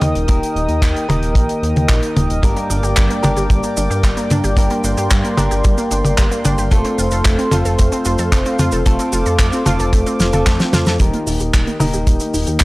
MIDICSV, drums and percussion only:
0, 0, Header, 1, 2, 480
1, 0, Start_track
1, 0, Tempo, 535714
1, 258, Time_signature, 4, 2, 24, 8
1, 11325, End_track
2, 0, Start_track
2, 0, Title_t, "Drums"
2, 12, Note_on_c, 9, 42, 78
2, 15, Note_on_c, 9, 48, 82
2, 102, Note_off_c, 9, 42, 0
2, 105, Note_off_c, 9, 48, 0
2, 137, Note_on_c, 9, 42, 56
2, 227, Note_off_c, 9, 42, 0
2, 251, Note_on_c, 9, 42, 89
2, 259, Note_on_c, 9, 36, 112
2, 341, Note_off_c, 9, 42, 0
2, 349, Note_off_c, 9, 36, 0
2, 387, Note_on_c, 9, 42, 55
2, 476, Note_off_c, 9, 42, 0
2, 504, Note_on_c, 9, 42, 47
2, 594, Note_off_c, 9, 42, 0
2, 614, Note_on_c, 9, 42, 47
2, 703, Note_off_c, 9, 42, 0
2, 735, Note_on_c, 9, 36, 115
2, 741, Note_on_c, 9, 42, 90
2, 744, Note_on_c, 9, 39, 116
2, 824, Note_off_c, 9, 36, 0
2, 831, Note_off_c, 9, 42, 0
2, 834, Note_off_c, 9, 39, 0
2, 863, Note_on_c, 9, 42, 52
2, 952, Note_off_c, 9, 42, 0
2, 982, Note_on_c, 9, 42, 62
2, 983, Note_on_c, 9, 48, 81
2, 1072, Note_off_c, 9, 42, 0
2, 1073, Note_off_c, 9, 48, 0
2, 1098, Note_on_c, 9, 42, 52
2, 1188, Note_off_c, 9, 42, 0
2, 1212, Note_on_c, 9, 36, 122
2, 1216, Note_on_c, 9, 42, 95
2, 1301, Note_off_c, 9, 36, 0
2, 1305, Note_off_c, 9, 42, 0
2, 1336, Note_on_c, 9, 42, 56
2, 1426, Note_off_c, 9, 42, 0
2, 1463, Note_on_c, 9, 42, 71
2, 1553, Note_off_c, 9, 42, 0
2, 1579, Note_on_c, 9, 42, 49
2, 1585, Note_on_c, 9, 48, 58
2, 1669, Note_off_c, 9, 42, 0
2, 1675, Note_off_c, 9, 48, 0
2, 1694, Note_on_c, 9, 39, 124
2, 1696, Note_on_c, 9, 36, 127
2, 1702, Note_on_c, 9, 42, 84
2, 1784, Note_off_c, 9, 39, 0
2, 1785, Note_off_c, 9, 36, 0
2, 1791, Note_off_c, 9, 42, 0
2, 1815, Note_on_c, 9, 42, 56
2, 1905, Note_off_c, 9, 42, 0
2, 1940, Note_on_c, 9, 42, 80
2, 1940, Note_on_c, 9, 48, 82
2, 2029, Note_off_c, 9, 42, 0
2, 2030, Note_off_c, 9, 48, 0
2, 2061, Note_on_c, 9, 42, 54
2, 2151, Note_off_c, 9, 42, 0
2, 2177, Note_on_c, 9, 42, 91
2, 2179, Note_on_c, 9, 36, 126
2, 2184, Note_on_c, 9, 69, 50
2, 2267, Note_off_c, 9, 42, 0
2, 2268, Note_off_c, 9, 36, 0
2, 2273, Note_off_c, 9, 69, 0
2, 2297, Note_on_c, 9, 42, 50
2, 2387, Note_off_c, 9, 42, 0
2, 2419, Note_on_c, 9, 42, 47
2, 2423, Note_on_c, 9, 69, 86
2, 2509, Note_off_c, 9, 42, 0
2, 2513, Note_off_c, 9, 69, 0
2, 2536, Note_on_c, 9, 42, 51
2, 2546, Note_on_c, 9, 69, 47
2, 2626, Note_off_c, 9, 42, 0
2, 2635, Note_off_c, 9, 69, 0
2, 2658, Note_on_c, 9, 39, 122
2, 2658, Note_on_c, 9, 42, 89
2, 2660, Note_on_c, 9, 69, 61
2, 2666, Note_on_c, 9, 36, 113
2, 2747, Note_off_c, 9, 39, 0
2, 2748, Note_off_c, 9, 42, 0
2, 2750, Note_off_c, 9, 69, 0
2, 2756, Note_off_c, 9, 36, 0
2, 2782, Note_on_c, 9, 42, 56
2, 2871, Note_off_c, 9, 42, 0
2, 2898, Note_on_c, 9, 42, 75
2, 2898, Note_on_c, 9, 69, 70
2, 2907, Note_on_c, 9, 48, 80
2, 2987, Note_off_c, 9, 69, 0
2, 2988, Note_off_c, 9, 42, 0
2, 2996, Note_off_c, 9, 48, 0
2, 3015, Note_on_c, 9, 42, 52
2, 3021, Note_on_c, 9, 69, 47
2, 3104, Note_off_c, 9, 42, 0
2, 3110, Note_off_c, 9, 69, 0
2, 3136, Note_on_c, 9, 36, 115
2, 3141, Note_on_c, 9, 42, 82
2, 3141, Note_on_c, 9, 69, 47
2, 3225, Note_off_c, 9, 36, 0
2, 3230, Note_off_c, 9, 42, 0
2, 3231, Note_off_c, 9, 69, 0
2, 3254, Note_on_c, 9, 69, 49
2, 3259, Note_on_c, 9, 42, 55
2, 3344, Note_off_c, 9, 69, 0
2, 3348, Note_off_c, 9, 42, 0
2, 3377, Note_on_c, 9, 69, 84
2, 3379, Note_on_c, 9, 42, 70
2, 3467, Note_off_c, 9, 69, 0
2, 3469, Note_off_c, 9, 42, 0
2, 3501, Note_on_c, 9, 42, 49
2, 3506, Note_on_c, 9, 69, 43
2, 3591, Note_off_c, 9, 42, 0
2, 3595, Note_off_c, 9, 69, 0
2, 3615, Note_on_c, 9, 36, 115
2, 3618, Note_on_c, 9, 42, 92
2, 3619, Note_on_c, 9, 69, 54
2, 3623, Note_on_c, 9, 39, 122
2, 3704, Note_off_c, 9, 36, 0
2, 3708, Note_off_c, 9, 42, 0
2, 3709, Note_off_c, 9, 69, 0
2, 3713, Note_off_c, 9, 39, 0
2, 3736, Note_on_c, 9, 42, 56
2, 3740, Note_on_c, 9, 69, 41
2, 3826, Note_off_c, 9, 42, 0
2, 3830, Note_off_c, 9, 69, 0
2, 3855, Note_on_c, 9, 42, 72
2, 3859, Note_on_c, 9, 69, 83
2, 3865, Note_on_c, 9, 48, 79
2, 3944, Note_off_c, 9, 42, 0
2, 3948, Note_off_c, 9, 69, 0
2, 3954, Note_off_c, 9, 48, 0
2, 3977, Note_on_c, 9, 42, 50
2, 3978, Note_on_c, 9, 69, 45
2, 4066, Note_off_c, 9, 42, 0
2, 4068, Note_off_c, 9, 69, 0
2, 4092, Note_on_c, 9, 36, 117
2, 4095, Note_on_c, 9, 69, 53
2, 4102, Note_on_c, 9, 42, 95
2, 4181, Note_off_c, 9, 36, 0
2, 4184, Note_off_c, 9, 69, 0
2, 4191, Note_off_c, 9, 42, 0
2, 4213, Note_on_c, 9, 42, 56
2, 4303, Note_off_c, 9, 42, 0
2, 4336, Note_on_c, 9, 69, 74
2, 4344, Note_on_c, 9, 42, 54
2, 4425, Note_off_c, 9, 69, 0
2, 4433, Note_off_c, 9, 42, 0
2, 4457, Note_on_c, 9, 69, 45
2, 4460, Note_on_c, 9, 42, 55
2, 4546, Note_off_c, 9, 69, 0
2, 4549, Note_off_c, 9, 42, 0
2, 4572, Note_on_c, 9, 69, 55
2, 4579, Note_on_c, 9, 42, 90
2, 4580, Note_on_c, 9, 39, 115
2, 4581, Note_on_c, 9, 36, 121
2, 4662, Note_off_c, 9, 69, 0
2, 4669, Note_off_c, 9, 42, 0
2, 4670, Note_off_c, 9, 36, 0
2, 4670, Note_off_c, 9, 39, 0
2, 4700, Note_on_c, 9, 42, 51
2, 4790, Note_off_c, 9, 42, 0
2, 4816, Note_on_c, 9, 48, 81
2, 4821, Note_on_c, 9, 69, 68
2, 4825, Note_on_c, 9, 42, 76
2, 4906, Note_off_c, 9, 48, 0
2, 4910, Note_off_c, 9, 69, 0
2, 4915, Note_off_c, 9, 42, 0
2, 4938, Note_on_c, 9, 42, 52
2, 4943, Note_on_c, 9, 69, 49
2, 5027, Note_off_c, 9, 42, 0
2, 5032, Note_off_c, 9, 69, 0
2, 5054, Note_on_c, 9, 69, 56
2, 5056, Note_on_c, 9, 42, 87
2, 5060, Note_on_c, 9, 36, 117
2, 5144, Note_off_c, 9, 69, 0
2, 5146, Note_off_c, 9, 42, 0
2, 5150, Note_off_c, 9, 36, 0
2, 5177, Note_on_c, 9, 42, 51
2, 5177, Note_on_c, 9, 69, 48
2, 5266, Note_off_c, 9, 42, 0
2, 5266, Note_off_c, 9, 69, 0
2, 5296, Note_on_c, 9, 42, 76
2, 5299, Note_on_c, 9, 69, 85
2, 5385, Note_off_c, 9, 42, 0
2, 5388, Note_off_c, 9, 69, 0
2, 5417, Note_on_c, 9, 48, 58
2, 5423, Note_on_c, 9, 69, 47
2, 5425, Note_on_c, 9, 42, 50
2, 5507, Note_off_c, 9, 48, 0
2, 5513, Note_off_c, 9, 69, 0
2, 5514, Note_off_c, 9, 42, 0
2, 5533, Note_on_c, 9, 42, 93
2, 5536, Note_on_c, 9, 39, 112
2, 5542, Note_on_c, 9, 36, 104
2, 5542, Note_on_c, 9, 69, 57
2, 5623, Note_off_c, 9, 42, 0
2, 5626, Note_off_c, 9, 39, 0
2, 5631, Note_off_c, 9, 36, 0
2, 5632, Note_off_c, 9, 69, 0
2, 5659, Note_on_c, 9, 42, 53
2, 5661, Note_on_c, 9, 69, 43
2, 5748, Note_off_c, 9, 42, 0
2, 5750, Note_off_c, 9, 69, 0
2, 5776, Note_on_c, 9, 42, 70
2, 5778, Note_on_c, 9, 69, 84
2, 5782, Note_on_c, 9, 48, 80
2, 5866, Note_off_c, 9, 42, 0
2, 5867, Note_off_c, 9, 69, 0
2, 5871, Note_off_c, 9, 48, 0
2, 5897, Note_on_c, 9, 69, 47
2, 5899, Note_on_c, 9, 42, 49
2, 5986, Note_off_c, 9, 69, 0
2, 5989, Note_off_c, 9, 42, 0
2, 6015, Note_on_c, 9, 69, 52
2, 6017, Note_on_c, 9, 36, 107
2, 6017, Note_on_c, 9, 42, 92
2, 6104, Note_off_c, 9, 69, 0
2, 6107, Note_off_c, 9, 36, 0
2, 6107, Note_off_c, 9, 42, 0
2, 6133, Note_on_c, 9, 42, 62
2, 6223, Note_off_c, 9, 42, 0
2, 6256, Note_on_c, 9, 42, 54
2, 6260, Note_on_c, 9, 69, 71
2, 6346, Note_off_c, 9, 42, 0
2, 6350, Note_off_c, 9, 69, 0
2, 6371, Note_on_c, 9, 69, 42
2, 6379, Note_on_c, 9, 42, 56
2, 6461, Note_off_c, 9, 69, 0
2, 6469, Note_off_c, 9, 42, 0
2, 6495, Note_on_c, 9, 69, 54
2, 6496, Note_on_c, 9, 42, 91
2, 6497, Note_on_c, 9, 39, 109
2, 6500, Note_on_c, 9, 36, 113
2, 6585, Note_off_c, 9, 69, 0
2, 6586, Note_off_c, 9, 39, 0
2, 6586, Note_off_c, 9, 42, 0
2, 6589, Note_off_c, 9, 36, 0
2, 6619, Note_on_c, 9, 42, 50
2, 6708, Note_off_c, 9, 42, 0
2, 6733, Note_on_c, 9, 48, 71
2, 6736, Note_on_c, 9, 42, 70
2, 6736, Note_on_c, 9, 69, 70
2, 6823, Note_off_c, 9, 48, 0
2, 6826, Note_off_c, 9, 42, 0
2, 6826, Note_off_c, 9, 69, 0
2, 6856, Note_on_c, 9, 42, 55
2, 6857, Note_on_c, 9, 69, 46
2, 6946, Note_off_c, 9, 42, 0
2, 6947, Note_off_c, 9, 69, 0
2, 6975, Note_on_c, 9, 42, 98
2, 6979, Note_on_c, 9, 69, 54
2, 6984, Note_on_c, 9, 36, 104
2, 7065, Note_off_c, 9, 42, 0
2, 7069, Note_off_c, 9, 69, 0
2, 7073, Note_off_c, 9, 36, 0
2, 7097, Note_on_c, 9, 42, 60
2, 7098, Note_on_c, 9, 69, 48
2, 7187, Note_off_c, 9, 42, 0
2, 7188, Note_off_c, 9, 69, 0
2, 7212, Note_on_c, 9, 69, 77
2, 7220, Note_on_c, 9, 42, 74
2, 7302, Note_off_c, 9, 69, 0
2, 7309, Note_off_c, 9, 42, 0
2, 7333, Note_on_c, 9, 69, 49
2, 7334, Note_on_c, 9, 42, 58
2, 7422, Note_off_c, 9, 69, 0
2, 7424, Note_off_c, 9, 42, 0
2, 7457, Note_on_c, 9, 36, 109
2, 7459, Note_on_c, 9, 69, 53
2, 7462, Note_on_c, 9, 39, 109
2, 7462, Note_on_c, 9, 42, 105
2, 7547, Note_off_c, 9, 36, 0
2, 7549, Note_off_c, 9, 69, 0
2, 7551, Note_off_c, 9, 39, 0
2, 7552, Note_off_c, 9, 42, 0
2, 7576, Note_on_c, 9, 69, 43
2, 7578, Note_on_c, 9, 42, 53
2, 7666, Note_off_c, 9, 69, 0
2, 7668, Note_off_c, 9, 42, 0
2, 7696, Note_on_c, 9, 69, 80
2, 7700, Note_on_c, 9, 42, 82
2, 7700, Note_on_c, 9, 48, 68
2, 7785, Note_off_c, 9, 69, 0
2, 7789, Note_off_c, 9, 48, 0
2, 7790, Note_off_c, 9, 42, 0
2, 7810, Note_on_c, 9, 69, 49
2, 7817, Note_on_c, 9, 42, 56
2, 7899, Note_off_c, 9, 69, 0
2, 7907, Note_off_c, 9, 42, 0
2, 7937, Note_on_c, 9, 42, 106
2, 7938, Note_on_c, 9, 69, 51
2, 7940, Note_on_c, 9, 36, 112
2, 8027, Note_off_c, 9, 42, 0
2, 8027, Note_off_c, 9, 69, 0
2, 8030, Note_off_c, 9, 36, 0
2, 8055, Note_on_c, 9, 42, 58
2, 8062, Note_on_c, 9, 69, 47
2, 8144, Note_off_c, 9, 42, 0
2, 8152, Note_off_c, 9, 69, 0
2, 8173, Note_on_c, 9, 42, 56
2, 8178, Note_on_c, 9, 69, 79
2, 8263, Note_off_c, 9, 42, 0
2, 8267, Note_off_c, 9, 69, 0
2, 8294, Note_on_c, 9, 42, 56
2, 8300, Note_on_c, 9, 69, 45
2, 8384, Note_off_c, 9, 42, 0
2, 8389, Note_off_c, 9, 69, 0
2, 8414, Note_on_c, 9, 36, 115
2, 8415, Note_on_c, 9, 39, 113
2, 8418, Note_on_c, 9, 42, 98
2, 8418, Note_on_c, 9, 69, 52
2, 8504, Note_off_c, 9, 36, 0
2, 8504, Note_off_c, 9, 39, 0
2, 8508, Note_off_c, 9, 42, 0
2, 8508, Note_off_c, 9, 69, 0
2, 8536, Note_on_c, 9, 69, 45
2, 8539, Note_on_c, 9, 42, 60
2, 8625, Note_off_c, 9, 69, 0
2, 8628, Note_off_c, 9, 42, 0
2, 8654, Note_on_c, 9, 42, 82
2, 8656, Note_on_c, 9, 48, 66
2, 8657, Note_on_c, 9, 69, 77
2, 8744, Note_off_c, 9, 42, 0
2, 8745, Note_off_c, 9, 48, 0
2, 8746, Note_off_c, 9, 69, 0
2, 8775, Note_on_c, 9, 69, 49
2, 8787, Note_on_c, 9, 42, 51
2, 8865, Note_off_c, 9, 69, 0
2, 8877, Note_off_c, 9, 42, 0
2, 8896, Note_on_c, 9, 36, 104
2, 8897, Note_on_c, 9, 42, 102
2, 8901, Note_on_c, 9, 69, 50
2, 8986, Note_off_c, 9, 36, 0
2, 8987, Note_off_c, 9, 42, 0
2, 8991, Note_off_c, 9, 69, 0
2, 9017, Note_on_c, 9, 42, 59
2, 9020, Note_on_c, 9, 69, 45
2, 9107, Note_off_c, 9, 42, 0
2, 9110, Note_off_c, 9, 69, 0
2, 9137, Note_on_c, 9, 42, 79
2, 9137, Note_on_c, 9, 69, 78
2, 9142, Note_on_c, 9, 38, 62
2, 9226, Note_off_c, 9, 42, 0
2, 9226, Note_off_c, 9, 69, 0
2, 9232, Note_off_c, 9, 38, 0
2, 9255, Note_on_c, 9, 69, 47
2, 9257, Note_on_c, 9, 42, 52
2, 9263, Note_on_c, 9, 48, 51
2, 9345, Note_off_c, 9, 69, 0
2, 9346, Note_off_c, 9, 42, 0
2, 9352, Note_off_c, 9, 48, 0
2, 9377, Note_on_c, 9, 39, 117
2, 9377, Note_on_c, 9, 42, 100
2, 9377, Note_on_c, 9, 69, 51
2, 9379, Note_on_c, 9, 36, 113
2, 9383, Note_on_c, 9, 38, 71
2, 9466, Note_off_c, 9, 42, 0
2, 9466, Note_off_c, 9, 69, 0
2, 9467, Note_off_c, 9, 39, 0
2, 9468, Note_off_c, 9, 36, 0
2, 9472, Note_off_c, 9, 38, 0
2, 9495, Note_on_c, 9, 42, 58
2, 9496, Note_on_c, 9, 69, 43
2, 9500, Note_on_c, 9, 38, 64
2, 9585, Note_off_c, 9, 42, 0
2, 9585, Note_off_c, 9, 69, 0
2, 9589, Note_off_c, 9, 38, 0
2, 9615, Note_on_c, 9, 38, 104
2, 9618, Note_on_c, 9, 48, 76
2, 9618, Note_on_c, 9, 69, 81
2, 9622, Note_on_c, 9, 42, 80
2, 9704, Note_off_c, 9, 38, 0
2, 9707, Note_off_c, 9, 69, 0
2, 9708, Note_off_c, 9, 48, 0
2, 9712, Note_off_c, 9, 42, 0
2, 9733, Note_on_c, 9, 69, 49
2, 9737, Note_on_c, 9, 42, 61
2, 9738, Note_on_c, 9, 38, 82
2, 9823, Note_off_c, 9, 69, 0
2, 9826, Note_off_c, 9, 42, 0
2, 9828, Note_off_c, 9, 38, 0
2, 9852, Note_on_c, 9, 69, 51
2, 9856, Note_on_c, 9, 36, 107
2, 9863, Note_on_c, 9, 42, 99
2, 9942, Note_off_c, 9, 69, 0
2, 9945, Note_off_c, 9, 36, 0
2, 9952, Note_off_c, 9, 42, 0
2, 9977, Note_on_c, 9, 42, 52
2, 10066, Note_off_c, 9, 42, 0
2, 10099, Note_on_c, 9, 46, 105
2, 10099, Note_on_c, 9, 69, 79
2, 10188, Note_off_c, 9, 69, 0
2, 10189, Note_off_c, 9, 46, 0
2, 10212, Note_on_c, 9, 69, 47
2, 10221, Note_on_c, 9, 42, 55
2, 10302, Note_off_c, 9, 69, 0
2, 10310, Note_off_c, 9, 42, 0
2, 10337, Note_on_c, 9, 42, 89
2, 10337, Note_on_c, 9, 69, 51
2, 10340, Note_on_c, 9, 36, 118
2, 10341, Note_on_c, 9, 39, 109
2, 10427, Note_off_c, 9, 42, 0
2, 10427, Note_off_c, 9, 69, 0
2, 10429, Note_off_c, 9, 36, 0
2, 10430, Note_off_c, 9, 39, 0
2, 10460, Note_on_c, 9, 42, 53
2, 10549, Note_off_c, 9, 42, 0
2, 10575, Note_on_c, 9, 48, 71
2, 10576, Note_on_c, 9, 69, 74
2, 10577, Note_on_c, 9, 46, 89
2, 10664, Note_off_c, 9, 48, 0
2, 10666, Note_off_c, 9, 46, 0
2, 10666, Note_off_c, 9, 69, 0
2, 10694, Note_on_c, 9, 42, 51
2, 10695, Note_on_c, 9, 69, 46
2, 10783, Note_off_c, 9, 42, 0
2, 10784, Note_off_c, 9, 69, 0
2, 10814, Note_on_c, 9, 42, 95
2, 10815, Note_on_c, 9, 36, 116
2, 10816, Note_on_c, 9, 69, 55
2, 10904, Note_off_c, 9, 36, 0
2, 10904, Note_off_c, 9, 42, 0
2, 10905, Note_off_c, 9, 69, 0
2, 10929, Note_on_c, 9, 69, 46
2, 10939, Note_on_c, 9, 42, 56
2, 11019, Note_off_c, 9, 69, 0
2, 11029, Note_off_c, 9, 42, 0
2, 11056, Note_on_c, 9, 46, 100
2, 11057, Note_on_c, 9, 69, 67
2, 11146, Note_off_c, 9, 46, 0
2, 11147, Note_off_c, 9, 69, 0
2, 11170, Note_on_c, 9, 42, 59
2, 11171, Note_on_c, 9, 69, 47
2, 11259, Note_off_c, 9, 42, 0
2, 11260, Note_off_c, 9, 69, 0
2, 11287, Note_on_c, 9, 39, 121
2, 11287, Note_on_c, 9, 69, 57
2, 11298, Note_on_c, 9, 36, 115
2, 11298, Note_on_c, 9, 42, 102
2, 11325, Note_off_c, 9, 36, 0
2, 11325, Note_off_c, 9, 39, 0
2, 11325, Note_off_c, 9, 42, 0
2, 11325, Note_off_c, 9, 69, 0
2, 11325, End_track
0, 0, End_of_file